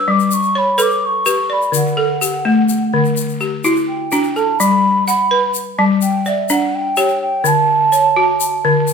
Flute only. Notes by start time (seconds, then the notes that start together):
Already playing: E6
0.10 D6
0.33 C#6
0.58 B5
0.82 D6
1.05 C#6
1.52 B5
1.75 F#5
3.88 G5
4.36 A5
4.59 B5
5.07 B5
5.78 A5
6.02 G5
6.27 E5
6.52 F#5
6.74 G5
7.22 G5
7.47 A5